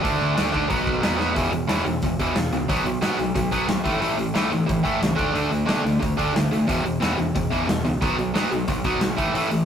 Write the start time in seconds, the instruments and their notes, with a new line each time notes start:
0.03 picked electric bass D2, distorted electric guitar D3 A3 D4, kick, open hi-hat
0.21 picked electric bass D2
0.35 picked electric bass D2, distorted electric guitar D3 A3 D4, snare, open hi-hat
0.52 distorted electric guitar D3 A3 D4, kick
0.68 picked electric bass B1, distorted electric guitar B2 F#3 B3, kick, open hi-hat
0.87 picked electric bass B1, kick
1.01 picked electric bass E2, distorted electric guitar B2 F#3 B3, snare, open hi-hat
1.18 distorted electric guitar B2 F#3 B3, snare
1.34 picked electric bass E1, distorted electric guitar E2 B2 E3, kick, open hi-hat
1.52 picked electric bass E1, distorted electric guitar E2 B2, open hi-hat
1.68 picked electric bass E1, distorted electric guitar E2 B2 E3, snare, open hi-hat
1.85 picked electric bass E1, distorted electric guitar E2 B2, open hi-hat
2.02 picked electric bass E1, distorted electric guitar E2 B2, kick, open hi-hat
2.19 picked electric bass E1, distorted electric guitar E2 B2 E3, kick, open hi-hat
2.35 picked electric bass E1, distorted electric guitar E2 B2, snare, open hi-hat
2.52 picked electric bass C#2, distorted electric guitar E2 B2, open hi-hat
2.69 picked electric bass B1, distorted electric guitar B2 F#3 B3, kick, open hi-hat
2.85 picked electric bass B1, distorted electric guitar B2 F#3, open hi-hat
3.01 picked electric bass A2, distorted electric guitar B2 F#3 B3, snare, open hi-hat
3.18 picked electric bass B1, distorted electric guitar B2 F#3, open hi-hat
3.35 picked electric bass B1, distorted electric guitar B2 F#3, kick, open hi-hat
3.51 picked electric bass B1, distorted electric guitar B2 F#3 B3, kick, open hi-hat
3.68 picked electric bass B1, distorted electric guitar B2 F#3, snare, open hi-hat
3.84 picked electric bass A1, distorted electric guitar A2 E3 A3, kick, open hi-hat
4.00 picked electric bass A1, distorted electric guitar A2 E3 A3, open hi-hat
4.17 picked electric bass A1, distorted electric guitar A2 E3, open hi-hat
4.34 picked electric bass A1, distorted electric guitar A2 E3 A3, snare, open hi-hat
4.51 picked electric bass A1, distorted electric guitar A2 E3, open hi-hat
4.66 picked electric bass A1, distorted electric guitar A2 E3, kick, open hi-hat
4.83 picked electric bass A1, distorted electric guitar A2 E3 A3, kick, open hi-hat
5.01 picked electric bass C#2, distorted electric guitar A2 E3, snare, open hi-hat
5.16 picked electric bass D2, distorted electric guitar D3 A3 D4, kick, open hi-hat
5.34 picked electric bass D2, distorted electric guitar D3 A3 D4, open hi-hat
5.51 picked electric bass D2, distorted electric guitar D3 A3, open hi-hat
5.66 picked electric bass B2, distorted electric guitar D3 A3 D4, snare, open hi-hat
5.83 picked electric bass D2, distorted electric guitar D3 A3, open hi-hat
6.00 picked electric bass D2, distorted electric guitar D3 A3, kick, open hi-hat
6.17 picked electric bass D2, distorted electric guitar D3 A3 D4, kick, open hi-hat
6.34 picked electric bass D2, distorted electric guitar D3 A3, snare, open hi-hat
6.51 picked electric bass A1, distorted electric guitar D3 A3, open hi-hat
6.67 picked electric bass E1, distorted electric guitar E2 B2 E3, kick, open hi-hat
6.84 picked electric bass E1, distorted electric guitar E2 B2, open hi-hat
7.00 picked electric bass E1, distorted electric guitar E2 B2 E3, snare, open hi-hat
7.17 picked electric bass E1, distorted electric guitar E2 B2, open hi-hat
7.35 distorted electric guitar E2 B2, kick, open hi-hat
7.50 picked electric bass E1, distorted electric guitar E2 B2 E3, kick, open hi-hat
7.67 picked electric bass E1, distorted electric guitar E2 B2, snare, open hi-hat
7.84 picked electric bass C#2, distorted electric guitar E2 B2, open hi-hat
8.01 picked electric bass B1, distorted electric guitar B2 F#3 B3, kick, open hi-hat
8.18 picked electric bass B1, distorted electric guitar B2 F#3, open hi-hat
8.34 picked electric bass A2, distorted electric guitar B2 F#3 B3, snare, open hi-hat
8.51 picked electric bass B1, distorted electric guitar B2 F#3, open hi-hat
8.68 picked electric bass B1, distorted electric guitar B2 F#3, kick, open hi-hat
8.84 picked electric bass B1, distorted electric guitar B2 F#3 B3, kick, open hi-hat
9.01 picked electric bass B1, distorted electric guitar B2 F#3, snare, open hi-hat
9.17 picked electric bass A1, distorted electric guitar A2 E3 A3, kick, open hi-hat
9.34 picked electric bass A1, distorted electric guitar A2 E3 A3, open hi-hat
9.51 picked electric bass A1, distorted electric guitar A2 E3, open hi-hat